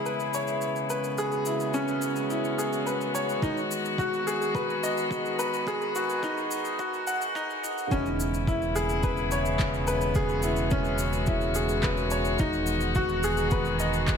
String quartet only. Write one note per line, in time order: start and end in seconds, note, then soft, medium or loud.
0.00 3.38 C#3 medium
0.00 7.87 G#3 medium
0.00 7.87 B3 medium
0.00 1.16 E4 medium
1.18 7.87 F#4 medium
3.42 7.87 D#3 medium
7.92 12.37 C#3 medium
7.92 14.17 G#3 medium
7.92 12.36 B3 medium
7.92 10.14 E4 medium
10.16 14.17 F#4 medium
12.39 14.17 D#3 medium
12.39 14.17 B3 medium